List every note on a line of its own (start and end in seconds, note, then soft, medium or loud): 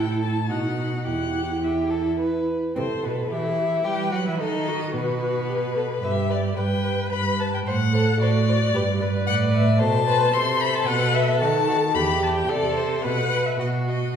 0.00 0.51 A2 soft
0.00 0.50 E4 medium
0.00 0.45 A4 medium
0.00 0.21 G5 medium
0.22 0.52 A5 medium
0.48 1.08 B2 soft
0.48 1.05 D#4 soft
0.48 1.06 F#4 soft
0.48 1.06 F#5 medium
1.05 2.56 E2 soft
1.05 1.62 E4 soft
1.05 1.62 G4 soft
1.05 1.65 F#5 medium
1.62 2.53 E4 soft
1.62 1.91 G4 soft
1.62 2.20 E5 medium
1.90 2.18 A4 medium
2.19 2.74 B4 medium
2.75 2.85 C3 medium
2.75 2.83 C4 medium
2.75 3.33 A4 medium
2.75 3.06 C5 medium
3.03 3.31 B2 medium
3.03 3.11 B3 soft
3.03 3.35 B4 medium
3.30 3.85 E3 medium
3.30 3.86 E4 medium
3.30 3.85 G4 medium
3.30 3.88 E5 medium
3.85 4.12 G3 medium
3.85 4.10 G4 medium
3.85 4.42 B4 medium
3.85 4.13 G5 medium
4.11 4.27 F#3 medium
4.11 4.17 F#4 medium
4.11 4.27 F#5 medium
4.26 4.41 E3 medium
4.26 4.38 E4 medium
4.26 4.41 E5 medium
4.38 4.95 D#3 medium
4.38 4.92 D#4 medium
4.38 4.69 A4 medium
4.38 4.94 D#5 medium
4.67 5.48 F#4 medium
4.94 6.02 B2 medium
4.94 6.01 B3 medium
4.94 6.05 B4 medium
5.48 5.56 G4 medium
5.76 5.84 A4 medium
6.02 6.51 G2 medium
6.02 6.56 G4 medium
6.02 6.10 B4 medium
6.02 6.32 E5 medium
6.30 6.38 B4 medium
6.30 6.57 D5 medium
6.57 7.06 G2 medium
6.57 6.65 B4 medium
6.57 7.64 B4 medium
6.57 7.11 G5 medium
6.84 6.92 B4 medium
7.12 7.60 G2 medium
7.12 7.21 B4 medium
7.12 7.41 B5 medium
7.40 7.48 B4 medium
7.40 7.53 A5 medium
7.54 7.59 G5 medium
7.66 8.14 A2 medium
7.66 7.75 C5 medium
7.66 8.19 F#5 loud
7.93 8.20 A4 medium
7.93 8.02 C5 medium
8.20 8.68 A2 medium
8.20 8.73 F#4 medium
8.20 8.30 C5 medium
8.20 9.26 D5 loud
8.49 8.57 C5 medium
8.74 9.21 G2 medium
8.74 8.82 G4 medium
8.74 8.83 B4 medium
9.01 9.82 B4 medium
9.01 9.09 B4 medium
9.26 9.82 A2 medium
9.26 9.81 D5 medium
9.26 9.34 F#5 loud
9.54 9.79 E5 medium
9.79 10.34 B2 medium
9.79 10.06 A4 medium
9.79 10.07 C5 medium
9.79 10.35 A5 loud
10.07 10.34 B4 medium
10.07 10.33 C5 medium
10.33 10.87 C3 medium
10.33 11.43 A4 medium
10.33 10.88 C5 medium
10.33 10.62 C6 loud
10.60 10.76 B5 medium
10.74 10.89 A5 medium
10.87 11.41 B2 medium
10.87 11.40 B4 medium
10.87 11.15 F#5 loud
11.14 11.39 E5 loud
11.40 11.97 D#3 medium
11.40 11.68 F#4 medium
11.40 11.94 A4 medium
11.40 11.96 A5 loud
11.69 11.77 F#4 medium
11.94 12.49 E2 medium
11.94 12.50 G4 medium
11.94 12.24 B5 loud
12.23 12.35 A5 medium
12.36 12.51 G5 medium
12.49 13.06 C3 medium
12.49 13.04 A4 medium
12.49 13.05 A4 medium
12.49 12.78 D5 loud
12.77 13.04 C5 medium
13.02 13.60 B2 medium
13.02 13.61 B4 medium
13.02 13.59 B4 medium
13.02 13.47 F#5 loud
13.45 13.59 E5 medium
13.59 14.16 B2 medium
13.59 14.16 F#4 medium
13.59 13.68 D#5 medium
13.87 14.16 D#5 medium